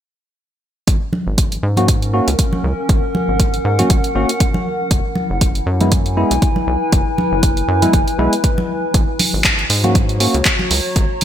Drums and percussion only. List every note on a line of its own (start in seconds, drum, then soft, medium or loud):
0.87 kick loud
0.87 closed hi-hat medium
1.13 high conga medium
1.38 kick medium
1.38 closed hi-hat medium
1.52 closed hi-hat soft
1.77 closed hi-hat soft
1.77 high conga medium
1.88 kick loud
1.88 closed hi-hat medium
2.02 closed hi-hat soft
2.28 closed hi-hat medium
2.39 kick medium
2.39 closed hi-hat medium
2.53 high conga medium
2.89 kick loud
2.89 closed hi-hat medium
3.15 high conga medium
3.40 kick loud
3.40 closed hi-hat medium
3.54 closed hi-hat soft
3.79 closed hi-hat soft
3.79 high conga medium
3.90 kick loud
3.90 closed hi-hat medium
4.04 closed hi-hat soft
4.29 closed hi-hat soft
4.40 kick loud
4.40 closed hi-hat medium
4.54 high conga medium
4.91 kick loud
4.91 closed hi-hat medium
5.15 high conga medium
5.41 kick loud
5.41 closed hi-hat medium
5.55 closed hi-hat soft
5.81 closed hi-hat soft
5.81 high conga medium
5.92 kick loud
5.92 closed hi-hat medium
6.06 closed hi-hat soft
6.31 closed hi-hat soft
6.42 kick loud
6.42 closed hi-hat medium
6.56 high conga medium
6.92 kick loud
6.92 closed hi-hat medium
7.18 high conga medium
7.43 kick loud
7.43 closed hi-hat medium
7.57 closed hi-hat soft
7.82 closed hi-hat soft
7.82 high conga medium
7.93 kick loud
7.93 closed hi-hat medium
8.08 closed hi-hat soft
8.33 closed hi-hat soft
8.44 kick loud
8.44 closed hi-hat medium
8.58 high conga medium
8.94 kick loud
8.94 closed hi-hat medium
9.19 open hi-hat loud
9.19 high conga medium
9.44 kick loud
9.44 clap loud
9.44 closed hi-hat medium
9.59 closed hi-hat soft
9.70 open hi-hat medium
9.84 closed hi-hat soft
9.84 high conga medium
9.95 kick loud
9.95 closed hi-hat medium
10.09 closed hi-hat soft
10.20 open hi-hat loud
10.34 closed hi-hat soft
10.45 kick loud
10.45 clap loud
10.45 closed hi-hat medium
10.59 high conga medium
10.71 open hi-hat medium
10.96 kick loud
10.96 closed hi-hat medium
11.21 open hi-hat loud